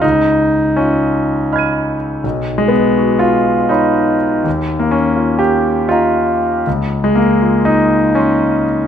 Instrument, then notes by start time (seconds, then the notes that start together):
grand piano
0.02 C#2 D#4
0.76 C#4 F4
1.53 D#5 B5 F6 G#6
1.58 D#7
2.24 B1
2.58 G#3
2.68 B3
2.98 F#4
3.19 F4
3.69 D#4 C#5 B5
4.44 D#2
4.79 A#3
4.91 C#4
5.16 F4
5.39 G4
5.89 F4 D#5 A#5
6.67 C#2
7.04 G#3
7.15 A#3
7.42 F4
7.65 D#4
8.15 C#4 D#5 C6